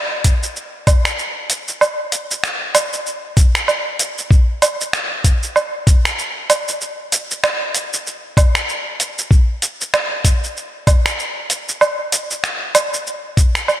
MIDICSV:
0, 0, Header, 1, 2, 480
1, 0, Start_track
1, 0, Tempo, 625000
1, 1390, Time_signature, 4, 2, 24, 8
1, 10598, End_track
2, 0, Start_track
2, 0, Title_t, "Drums"
2, 188, Note_on_c, 9, 42, 97
2, 189, Note_on_c, 9, 36, 62
2, 191, Note_on_c, 9, 82, 73
2, 264, Note_off_c, 9, 42, 0
2, 265, Note_off_c, 9, 36, 0
2, 268, Note_off_c, 9, 82, 0
2, 331, Note_on_c, 9, 82, 44
2, 408, Note_off_c, 9, 82, 0
2, 432, Note_on_c, 9, 82, 34
2, 509, Note_off_c, 9, 82, 0
2, 668, Note_on_c, 9, 36, 107
2, 669, Note_on_c, 9, 42, 92
2, 669, Note_on_c, 9, 77, 81
2, 673, Note_on_c, 9, 82, 79
2, 745, Note_off_c, 9, 36, 0
2, 746, Note_off_c, 9, 42, 0
2, 746, Note_off_c, 9, 77, 0
2, 750, Note_off_c, 9, 82, 0
2, 808, Note_on_c, 9, 26, 77
2, 812, Note_on_c, 9, 82, 47
2, 885, Note_off_c, 9, 26, 0
2, 889, Note_off_c, 9, 82, 0
2, 912, Note_on_c, 9, 82, 34
2, 989, Note_off_c, 9, 82, 0
2, 1149, Note_on_c, 9, 42, 84
2, 1153, Note_on_c, 9, 82, 70
2, 1226, Note_off_c, 9, 42, 0
2, 1230, Note_off_c, 9, 82, 0
2, 1291, Note_on_c, 9, 82, 46
2, 1368, Note_off_c, 9, 82, 0
2, 1392, Note_on_c, 9, 77, 72
2, 1395, Note_on_c, 9, 82, 35
2, 1468, Note_off_c, 9, 77, 0
2, 1472, Note_off_c, 9, 82, 0
2, 1629, Note_on_c, 9, 42, 91
2, 1633, Note_on_c, 9, 82, 75
2, 1706, Note_off_c, 9, 42, 0
2, 1710, Note_off_c, 9, 82, 0
2, 1774, Note_on_c, 9, 82, 46
2, 1850, Note_off_c, 9, 82, 0
2, 1870, Note_on_c, 9, 26, 74
2, 1874, Note_on_c, 9, 82, 34
2, 1947, Note_off_c, 9, 26, 0
2, 1951, Note_off_c, 9, 82, 0
2, 2109, Note_on_c, 9, 42, 84
2, 2109, Note_on_c, 9, 77, 74
2, 2113, Note_on_c, 9, 82, 78
2, 2186, Note_off_c, 9, 42, 0
2, 2186, Note_off_c, 9, 77, 0
2, 2190, Note_off_c, 9, 82, 0
2, 2251, Note_on_c, 9, 82, 47
2, 2328, Note_off_c, 9, 82, 0
2, 2353, Note_on_c, 9, 82, 33
2, 2430, Note_off_c, 9, 82, 0
2, 2587, Note_on_c, 9, 36, 111
2, 2587, Note_on_c, 9, 42, 91
2, 2591, Note_on_c, 9, 82, 84
2, 2664, Note_off_c, 9, 36, 0
2, 2664, Note_off_c, 9, 42, 0
2, 2668, Note_off_c, 9, 82, 0
2, 2727, Note_on_c, 9, 26, 83
2, 2731, Note_on_c, 9, 82, 47
2, 2804, Note_off_c, 9, 26, 0
2, 2808, Note_off_c, 9, 82, 0
2, 2827, Note_on_c, 9, 77, 74
2, 2831, Note_on_c, 9, 82, 36
2, 2904, Note_off_c, 9, 77, 0
2, 2907, Note_off_c, 9, 82, 0
2, 3067, Note_on_c, 9, 42, 84
2, 3071, Note_on_c, 9, 82, 78
2, 3144, Note_off_c, 9, 42, 0
2, 3148, Note_off_c, 9, 82, 0
2, 3211, Note_on_c, 9, 82, 46
2, 3288, Note_off_c, 9, 82, 0
2, 3307, Note_on_c, 9, 36, 117
2, 3315, Note_on_c, 9, 82, 35
2, 3384, Note_off_c, 9, 36, 0
2, 3392, Note_off_c, 9, 82, 0
2, 3549, Note_on_c, 9, 42, 80
2, 3549, Note_on_c, 9, 77, 73
2, 3553, Note_on_c, 9, 82, 77
2, 3626, Note_off_c, 9, 42, 0
2, 3626, Note_off_c, 9, 77, 0
2, 3630, Note_off_c, 9, 82, 0
2, 3692, Note_on_c, 9, 82, 44
2, 3769, Note_off_c, 9, 82, 0
2, 3789, Note_on_c, 9, 26, 78
2, 3793, Note_on_c, 9, 82, 34
2, 3866, Note_off_c, 9, 26, 0
2, 3870, Note_off_c, 9, 82, 0
2, 4027, Note_on_c, 9, 36, 66
2, 4028, Note_on_c, 9, 42, 85
2, 4032, Note_on_c, 9, 82, 84
2, 4104, Note_off_c, 9, 36, 0
2, 4105, Note_off_c, 9, 42, 0
2, 4109, Note_off_c, 9, 82, 0
2, 4170, Note_on_c, 9, 82, 47
2, 4247, Note_off_c, 9, 82, 0
2, 4269, Note_on_c, 9, 77, 72
2, 4272, Note_on_c, 9, 82, 36
2, 4345, Note_off_c, 9, 77, 0
2, 4349, Note_off_c, 9, 82, 0
2, 4508, Note_on_c, 9, 36, 115
2, 4509, Note_on_c, 9, 42, 89
2, 4513, Note_on_c, 9, 82, 84
2, 4584, Note_off_c, 9, 36, 0
2, 4586, Note_off_c, 9, 42, 0
2, 4590, Note_off_c, 9, 82, 0
2, 4649, Note_on_c, 9, 26, 80
2, 4653, Note_on_c, 9, 82, 48
2, 4726, Note_off_c, 9, 26, 0
2, 4730, Note_off_c, 9, 82, 0
2, 4753, Note_on_c, 9, 82, 38
2, 4829, Note_off_c, 9, 82, 0
2, 4990, Note_on_c, 9, 42, 80
2, 4990, Note_on_c, 9, 77, 68
2, 4994, Note_on_c, 9, 82, 71
2, 5067, Note_off_c, 9, 42, 0
2, 5067, Note_off_c, 9, 77, 0
2, 5071, Note_off_c, 9, 82, 0
2, 5132, Note_on_c, 9, 82, 51
2, 5209, Note_off_c, 9, 82, 0
2, 5231, Note_on_c, 9, 82, 35
2, 5308, Note_off_c, 9, 82, 0
2, 5470, Note_on_c, 9, 42, 78
2, 5474, Note_on_c, 9, 82, 82
2, 5547, Note_off_c, 9, 42, 0
2, 5551, Note_off_c, 9, 82, 0
2, 5613, Note_on_c, 9, 82, 50
2, 5690, Note_off_c, 9, 82, 0
2, 5711, Note_on_c, 9, 26, 74
2, 5711, Note_on_c, 9, 77, 73
2, 5715, Note_on_c, 9, 82, 33
2, 5788, Note_off_c, 9, 26, 0
2, 5788, Note_off_c, 9, 77, 0
2, 5792, Note_off_c, 9, 82, 0
2, 5948, Note_on_c, 9, 42, 85
2, 5952, Note_on_c, 9, 82, 78
2, 6025, Note_off_c, 9, 42, 0
2, 6029, Note_off_c, 9, 82, 0
2, 6093, Note_on_c, 9, 82, 50
2, 6169, Note_off_c, 9, 82, 0
2, 6196, Note_on_c, 9, 82, 35
2, 6272, Note_off_c, 9, 82, 0
2, 6428, Note_on_c, 9, 36, 107
2, 6432, Note_on_c, 9, 42, 88
2, 6432, Note_on_c, 9, 77, 76
2, 6436, Note_on_c, 9, 82, 87
2, 6505, Note_off_c, 9, 36, 0
2, 6509, Note_off_c, 9, 42, 0
2, 6509, Note_off_c, 9, 77, 0
2, 6512, Note_off_c, 9, 82, 0
2, 6567, Note_on_c, 9, 26, 81
2, 6571, Note_on_c, 9, 82, 46
2, 6644, Note_off_c, 9, 26, 0
2, 6648, Note_off_c, 9, 82, 0
2, 6674, Note_on_c, 9, 82, 34
2, 6751, Note_off_c, 9, 82, 0
2, 6911, Note_on_c, 9, 42, 75
2, 6915, Note_on_c, 9, 82, 73
2, 6988, Note_off_c, 9, 42, 0
2, 6992, Note_off_c, 9, 82, 0
2, 7053, Note_on_c, 9, 82, 49
2, 7130, Note_off_c, 9, 82, 0
2, 7148, Note_on_c, 9, 36, 106
2, 7154, Note_on_c, 9, 82, 34
2, 7225, Note_off_c, 9, 36, 0
2, 7231, Note_off_c, 9, 82, 0
2, 7390, Note_on_c, 9, 42, 87
2, 7393, Note_on_c, 9, 82, 76
2, 7466, Note_off_c, 9, 42, 0
2, 7470, Note_off_c, 9, 82, 0
2, 7533, Note_on_c, 9, 82, 46
2, 7610, Note_off_c, 9, 82, 0
2, 7632, Note_on_c, 9, 26, 73
2, 7632, Note_on_c, 9, 77, 78
2, 7635, Note_on_c, 9, 82, 33
2, 7708, Note_off_c, 9, 26, 0
2, 7708, Note_off_c, 9, 77, 0
2, 7712, Note_off_c, 9, 82, 0
2, 7868, Note_on_c, 9, 36, 61
2, 7869, Note_on_c, 9, 42, 81
2, 7873, Note_on_c, 9, 82, 77
2, 7945, Note_off_c, 9, 36, 0
2, 7946, Note_off_c, 9, 42, 0
2, 7949, Note_off_c, 9, 82, 0
2, 8017, Note_on_c, 9, 82, 45
2, 8094, Note_off_c, 9, 82, 0
2, 8118, Note_on_c, 9, 82, 33
2, 8194, Note_off_c, 9, 82, 0
2, 8349, Note_on_c, 9, 36, 110
2, 8350, Note_on_c, 9, 42, 86
2, 8350, Note_on_c, 9, 77, 79
2, 8354, Note_on_c, 9, 82, 76
2, 8426, Note_off_c, 9, 36, 0
2, 8427, Note_off_c, 9, 42, 0
2, 8427, Note_off_c, 9, 77, 0
2, 8431, Note_off_c, 9, 82, 0
2, 8492, Note_on_c, 9, 26, 78
2, 8496, Note_on_c, 9, 82, 47
2, 8569, Note_off_c, 9, 26, 0
2, 8572, Note_off_c, 9, 82, 0
2, 8596, Note_on_c, 9, 82, 34
2, 8673, Note_off_c, 9, 82, 0
2, 8831, Note_on_c, 9, 42, 75
2, 8835, Note_on_c, 9, 82, 73
2, 8908, Note_off_c, 9, 42, 0
2, 8912, Note_off_c, 9, 82, 0
2, 8975, Note_on_c, 9, 82, 47
2, 9052, Note_off_c, 9, 82, 0
2, 9071, Note_on_c, 9, 77, 80
2, 9075, Note_on_c, 9, 82, 31
2, 9148, Note_off_c, 9, 77, 0
2, 9152, Note_off_c, 9, 82, 0
2, 9311, Note_on_c, 9, 42, 82
2, 9315, Note_on_c, 9, 82, 71
2, 9388, Note_off_c, 9, 42, 0
2, 9392, Note_off_c, 9, 82, 0
2, 9452, Note_on_c, 9, 82, 43
2, 9529, Note_off_c, 9, 82, 0
2, 9552, Note_on_c, 9, 26, 69
2, 9555, Note_on_c, 9, 82, 31
2, 9628, Note_off_c, 9, 26, 0
2, 9632, Note_off_c, 9, 82, 0
2, 9790, Note_on_c, 9, 42, 84
2, 9790, Note_on_c, 9, 77, 86
2, 9794, Note_on_c, 9, 82, 79
2, 9867, Note_off_c, 9, 42, 0
2, 9867, Note_off_c, 9, 77, 0
2, 9871, Note_off_c, 9, 82, 0
2, 9936, Note_on_c, 9, 82, 46
2, 10012, Note_off_c, 9, 82, 0
2, 10037, Note_on_c, 9, 82, 34
2, 10114, Note_off_c, 9, 82, 0
2, 10270, Note_on_c, 9, 36, 101
2, 10271, Note_on_c, 9, 42, 91
2, 10275, Note_on_c, 9, 82, 76
2, 10347, Note_off_c, 9, 36, 0
2, 10348, Note_off_c, 9, 42, 0
2, 10352, Note_off_c, 9, 82, 0
2, 10408, Note_on_c, 9, 26, 75
2, 10412, Note_on_c, 9, 82, 44
2, 10485, Note_off_c, 9, 26, 0
2, 10489, Note_off_c, 9, 82, 0
2, 10509, Note_on_c, 9, 77, 84
2, 10512, Note_on_c, 9, 82, 34
2, 10585, Note_off_c, 9, 77, 0
2, 10589, Note_off_c, 9, 82, 0
2, 10598, End_track
0, 0, End_of_file